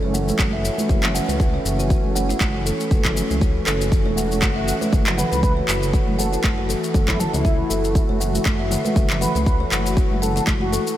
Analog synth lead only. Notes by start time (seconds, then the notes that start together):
5.18 B4
5.32 B4
5.43 B4
6.19 A4
6.33 A4
7.08 E4
7.20 A4
7.33 E4
9.21 B4
9.35 B4
9.46 B4
10.22 A4
10.36 A4
10.61 F#4